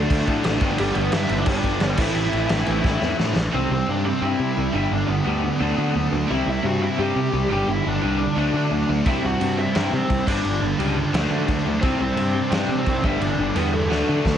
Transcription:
Already playing: D3 F#3 A3 D4
0.10 D2, kick, crash
0.27 A2 D3 A3 D4, kick, crash
0.44 A1 D3 A3 D4, snare, crash
0.60 G1 G2 D3 G3 B3 D4, kick, crash
0.78 G1 G3 G4, crash
0.95 G1 B3 B4, crash
1.11 G2 D3 E4 E5, snare, crash
1.15 G3
1.29 G1, crash
1.38 D4 D5
1.46 G1 G2 D3 G3 D4 D5, kick, crash
1.63 G1 G2 D3 G3, kick, crash
1.80 G1, snare, crash
1.90 C5
1.97 A1 A2 E3 A3 C4 E4 E5, kick, crash
2.15 A1, crash
2.33 A1, crash
2.49 A1 A2 E3 A3, snare, crash
2.66 A1, crash
2.83 A1 A2 E3 A3, kick, snare
3.01 E2 A2 E3 A3, snare
3.19 A2, snare
3.36 A1, snare
3.54 C2 C3 G3 C4 C5
3.70 C2 C3 G3 C4 C5
3.88 G2 C3 G3 D4 D5
4.05 C3 G3 C4 C5
4.21 G2 C3 G3 C4 E4
4.26 E5
4.39 C3 G3
4.57 C2 C3 G3
4.73 G1 G2 D3 G3 E4 E5
4.91 G1 G2 D3 D4 D5
5.08 G1 G2 D3 B3 B4
5.24 D2 G2 D3 G3
5.43 G2 D3
5.60 D2 D3 F#3 A3 D4
5.77 D3 F#3 A3 D4
5.95 D2 D3 F#3 A3
6.11 D2 D3 F#3 A3
6.30 C2 C3 G3 C4 E4 E5
6.46 C2 C3 G3 E4
6.51 E5
6.63 G2 C3 G3 F#4 F#5
6.81 C3 G3 E4 E5
6.99 G2 C3 G3 C4 G4 G5
7.16 C3 G3
7.33 C2 C3 G3
7.50 G1 G2 D3 G3 G4 G5
7.68 G1 G2 D3 E4 E5
7.85 G1 G2 D3 D4 D5
8.02 C2 G2 D3 G3
8.20 G2 D3
8.36 D2 D3 F#3 A3 D4
8.54 D3 F#3 A3 D4
8.71 D2 D3 F#3 A3
8.88 D2 D3 F#3 A3
9.06 C2 C3 G3 C4 E4 E5, kick, crash
9.23 C2 C3 G3 F#4 F#5
9.41 G2 C3 G3, crash
9.57 C3 G3 E4 E5
9.74 G2 C3 G3 C4, snare, crash
9.92 C3 G3 C4 C5
10.09 C2 C3 G3, kick, crash
10.27 G1 G2 D3 G3 D4 D5, kick, crash
10.44 G1 G2 D3, crash
10.61 G1 G2 D3
10.79 C#2 G2 D3 G3, crash
10.97 G2 D3
11.13 D2 D3 F#3 A3 D4, snare, crash
11.30 D3 F#3 A3 D4
11.48 D2 D3 F#3 A3, kick, crash
11.65 D2 D3 F#3 A3
11.81 C2 C3 G3 C4 C5, kick, crash
11.99 C2 C3 G3 C4 C5
12.17 G2 C3 G3, crash
12.34 C3 G3
12.51 G2 C3 G3 C4 D4 D5, snare, crash
12.68 C3 G3
12.78 C4 C5
12.86 C2 C3 G3, kick, crash
13.03 G1 G2 D3 G3 E4 E5, kick
13.21 G1 G2 D3 D4 D5, crash
13.38 G1 G2 D3
13.55 E2 G2 D3 G3 B3 B4, crash
13.72 G2 D3 A3 A4
13.90 D2 D3 F#3 A3 D4, snare
14.07 D3 F#3 A3 D4
14.25 D2 D3 F#3 A3, kick, snare

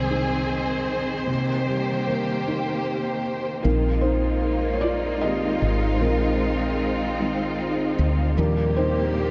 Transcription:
Already playing: C2 C3 D#3 G#3 C4 G#4 C5
0.10 D#4
1.27 C3 A#3 G4
1.68 G3
2.07 A#3
2.47 D#4
3.63 A#1 D#3 G#3 A#3 C4 D#4 F4 A#4
4.01 D#4 C5
4.73 C#5
4.81 F4 D5
5.21 D#3 G#3 C4 G4 D#5
5.62 G#1
5.93 C5
6.01 A#1 D#3 G#3 C4 D#4 A#4
7.19 D#3 G#3 C4
7.99 D2
8.37 D#2 A#2 F3 G3 A#3 D4 G4 A#4
8.76 D#4 C5

